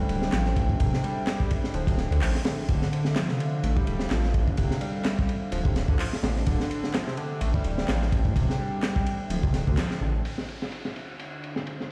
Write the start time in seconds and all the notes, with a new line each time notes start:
Already playing: D4 A4 C5 E5 G5
0.09 D1 G3, ride
0.22 snare
0.32 A1 F3, snare, clap, ride
0.45 snare
0.56 kick, ride
0.69 kick
0.80 D1 C3, kick, ride
0.93 C3, snare
1.04 G3, ride
1.27 snare, clap, ride
1.40 kick
1.51 kick, ride
1.64 snare
1.74 D1 F3, ride
1.87 C3, kick, ride
1.98 snare
2.11 D2 D3, ride
2.21 A1 F3, clap, open hi-hat
2.35 snare
2.44 D3, snare, ride
2.59 snare
2.68 D1 D3 F5, kick, ride
2.82 snare
2.93 ride
3.05 snare
3.16 F3, snare, clap, ride
3.29 C3, snare
3.39 D3, ride
3.63 A1 A3, ride
3.76 G3, kick
3.87 D1 G3, ride
3.99 snare
4.10 A1 F3, snare, clap, ride
4.24 snare
4.34 kick, ride
4.47 kick
4.57 D1 C3, kick, ride
4.71 C3, snare
4.81 G3, ride
5.04 snare, clap, ride
5.19 kick
5.29 ride
5.52 D1 F3, ride
5.65 C3, kick
5.76 snare, ride
5.88 D2 D3, kick
5.99 F3, clap, open hi-hat
6.13 snare
6.23 A1 D3, snare, ride
6.36 snare
6.46 D1 D3 G5, kick, ride
6.60 snare
6.71 ride
6.84 snare
6.94 F3, snare, clap, ride
7.07 C3, snare
7.17 D3, ride
7.41 A1 A3, ride
7.54 G3, kick
7.64 D1 G3, ride
7.78 snare
7.88 A1 F3, snare, clap, ride
8.02 snare
8.12 kick, ride
8.25 kick
8.36 D1 C3, kick, ride
8.49 C3, snare
8.59 G3
8.82 snare, clap, ride
8.96 kick
9.06 ride
9.30 D1 F3, ride
9.43 C3, kick
9.54 snare, ride
9.67 D2 D3, kick
9.77 F3, snare, clap, ride
9.91 snare
10.01 A1 D3
10.24 D3 D4 C5 E5 F5, ride, downlifter
10.38 snare
10.48 ride
10.62 snare
10.72 ride
10.85 snare
10.96 ride
11.19 ride
11.44 ride
11.56 snare
11.67 ride
11.80 snare